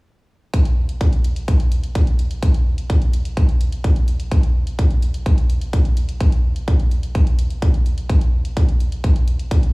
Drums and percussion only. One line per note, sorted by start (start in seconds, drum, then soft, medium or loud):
0.54 kick loud
0.54 closed hi-hat medium
0.65 closed hi-hat soft
0.89 closed hi-hat soft
1.01 kick loud
1.01 closed hi-hat medium
1.13 closed hi-hat soft
1.24 closed hi-hat medium
1.36 closed hi-hat soft
1.48 kick loud
1.48 closed hi-hat medium
1.60 closed hi-hat soft
1.72 closed hi-hat medium
1.84 closed hi-hat soft
1.95 kick loud
1.95 closed hi-hat medium
2.07 closed hi-hat soft
2.19 closed hi-hat medium
2.31 closed hi-hat soft
2.43 kick loud
2.43 closed hi-hat medium
2.54 closed hi-hat soft
2.78 closed hi-hat soft
2.90 kick loud
2.90 closed hi-hat medium
3.02 closed hi-hat soft
3.13 closed hi-hat medium
3.25 closed hi-hat soft
3.37 kick loud
3.37 closed hi-hat medium
3.49 closed hi-hat soft
3.61 closed hi-hat medium
3.72 closed hi-hat soft
3.84 kick loud
3.84 closed hi-hat medium
3.96 closed hi-hat soft
4.08 closed hi-hat medium
4.20 closed hi-hat soft
4.31 kick loud
4.31 closed hi-hat medium
4.43 closed hi-hat soft
4.67 closed hi-hat soft
4.79 kick loud
4.79 closed hi-hat medium
4.91 closed hi-hat soft
5.02 closed hi-hat medium
5.14 closed hi-hat soft
5.26 kick loud
5.26 closed hi-hat medium
5.38 closed hi-hat soft
5.50 closed hi-hat medium
5.61 closed hi-hat soft
5.73 kick loud
5.73 closed hi-hat medium
5.85 closed hi-hat soft
5.97 closed hi-hat medium
6.09 closed hi-hat soft
6.20 kick loud
6.20 closed hi-hat medium
6.32 closed hi-hat soft
6.56 closed hi-hat soft
6.68 kick loud
6.68 closed hi-hat medium
6.80 closed hi-hat soft
6.91 closed hi-hat medium
7.03 closed hi-hat soft
7.15 kick loud
7.15 closed hi-hat medium
7.27 closed hi-hat soft
7.39 closed hi-hat medium
7.50 closed hi-hat soft
7.62 kick loud
7.62 closed hi-hat medium
7.74 closed hi-hat soft
7.86 closed hi-hat medium
7.98 closed hi-hat soft
8.09 kick loud
8.09 closed hi-hat medium
8.21 closed hi-hat soft
8.45 closed hi-hat soft
8.57 kick loud
8.57 closed hi-hat medium
8.69 closed hi-hat soft
8.80 closed hi-hat medium
8.92 closed hi-hat soft
9.04 kick loud
9.04 closed hi-hat medium
9.16 closed hi-hat soft
9.28 closed hi-hat medium
9.39 closed hi-hat soft
9.51 kick loud
9.51 closed hi-hat medium
9.63 closed hi-hat soft